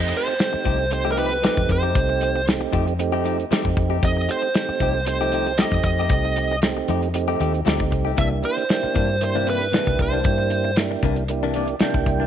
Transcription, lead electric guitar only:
0.00 0.15 D#5 loud
0.17 0.89 C5 medium
0.93 1.11 C5 medium
1.12 1.18 A#4 medium
1.19 1.72 B4 medium
1.72 2.45 C5 medium
4.05 4.31 D#5 loud
4.31 5.04 C5 medium
5.08 5.61 C5 medium
5.58 5.83 D#5 loud
5.84 6.58 D#5 medium
8.19 8.26 E5 loud
8.45 9.23 C5 medium
9.24 9.49 C5 medium
9.50 10.02 B4 medium
10.02 10.75 C5 medium

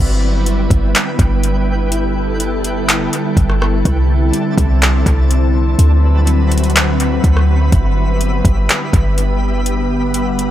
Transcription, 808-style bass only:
0.00 0.68 G1 loud
0.70 0.94 G1 loud
1.19 3.09 G1 loud
3.37 3.83 G1 loud
3.85 4.32 C2 loud
4.58 5.04 C2 loud
5.06 5.76 C2 loud
5.79 7.20 D2 loud
7.24 7.70 D2 loud
7.72 8.42 G1 loud
8.45 8.68 G1 loud
8.93 10.51 G1 loud

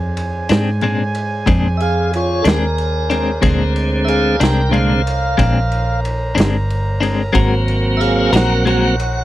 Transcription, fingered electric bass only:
0.00 0.47 F2 medium
0.50 1.45 G#2 medium
1.48 2.43 F2 medium
2.46 3.41 D#2 medium
3.43 4.38 D2 medium
4.41 5.36 C2 loud
5.39 6.34 A#1 medium
6.37 7.32 G1 medium
7.35 8.30 G#1 medium
8.33 9.24 A#1 loud

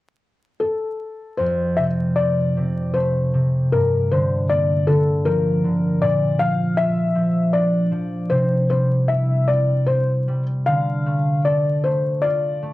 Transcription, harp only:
1.39 3.78 F2 medium
1.78 2.56 C3 soft
2.17 5.17 C4 soft
2.57 3.33 C3 soft
2.95 4.56 A3 soft
3.34 3.78 C3 soft
3.72 6.07 G2 medium
4.11 4.87 D3 medium
4.50 7.72 A#3 medium
4.88 5.63 D3 soft
5.26 5.69 F3 soft
5.64 6.07 D3 soft
6.01 8.37 A#2 medium
6.39 7.14 F3 soft
6.77 9.15 F4 soft
7.15 7.90 F3 soft
7.53 10.33 D4 soft
7.91 8.37 F3 soft
8.31 10.72 C3 medium
8.70 9.47 G3 soft
9.09 11.70 E4 medium
9.48 10.27 G3 soft
9.88 12.73 C4 soft
10.28 10.72 G3 soft
10.67 12.73 D3 medium
11.06 11.84 A3 soft
11.46 12.73 A4 soft
11.85 12.62 A3 soft
12.24 12.73 F4 soft
12.62 12.73 A3 soft

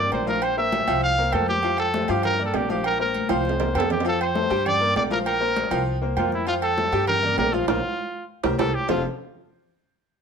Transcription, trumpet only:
0.00 0.11 D5 loud
0.13 0.27 C5 medium
0.28 0.45 A#4 loud
0.43 0.57 C5 loud
0.58 1.00 E5 loud
1.03 1.35 F5 loud
1.34 1.48 A4 loud
1.49 1.76 G4 loud
1.79 2.11 A4 loud
2.10 2.24 G4 medium
2.25 2.43 A#4 loud
2.45 2.57 A4 medium
2.56 2.70 G4 medium
2.71 2.84 G4 medium
2.86 2.99 A#4 loud
3.01 3.28 A#4 medium
3.31 3.72 C5 medium
3.77 3.90 A4 medium
3.91 4.05 G4 medium
4.07 4.20 A4 loud
4.22 4.68 C5 loud
4.67 4.96 D5 loud
4.97 5.03 D5 loud
5.12 5.19 A#4 loud
5.27 5.83 A#4 loud
6.18 6.32 F4 medium
6.34 6.47 E4 medium
6.48 6.54 F4 loud
6.63 7.05 A4 loud
7.08 7.36 A#4 loud
7.38 7.55 A#4 loud
7.53 7.68 F4 loud
7.68 8.25 F4 loud
8.59 8.76 A4 loud
8.74 8.89 G4 loud
8.90 9.03 F4 medium

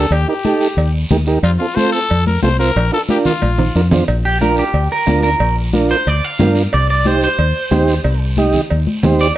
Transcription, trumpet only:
0.00 0.14 A4 medium
0.12 0.28 G4 medium
0.29 0.91 G4 medium
1.43 1.51 F4 medium
1.58 1.77 F4 medium
1.75 1.91 C5 loud
1.92 2.23 A4 loud
2.27 2.42 A#4 medium
2.43 2.58 C5 loud
2.59 2.90 A#4 loud
2.93 3.01 A4 loud
3.10 3.17 G4 medium
3.25 3.88 F4 medium

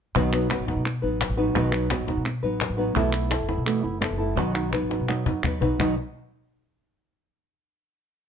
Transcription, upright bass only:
0.15 0.52 B1 medium
0.59 0.74 A1 medium
0.76 0.99 B2 medium
1.03 1.25 A1 medium
1.29 1.51 A1 medium
1.56 1.93 B1 loud
2.00 2.14 A1 medium
2.17 2.39 B2 medium
2.43 2.65 A1 medium
2.70 2.92 A1 medium
2.96 3.33 B1 medium
3.40 3.55 F#1 medium
3.58 3.80 B2 medium
3.84 4.06 F#1 medium
4.11 4.33 F#1 medium
4.37 4.75 B1 medium
4.82 4.97 A1 medium
5.00 5.22 B2 medium
5.26 5.42 F#2 medium
5.44 5.60 D#2 medium
5.61 5.77 B1 medium
5.79 5.95 B1 medium

